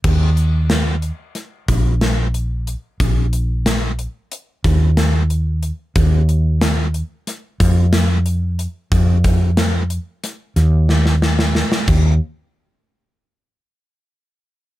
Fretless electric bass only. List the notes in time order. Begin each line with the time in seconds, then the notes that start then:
0.04 D#2
1.68 A#1
3.00 A#1
4.65 D#2
5.96 D#2
7.60 F2
8.92 F2
10.56 D#2
11.88 D#2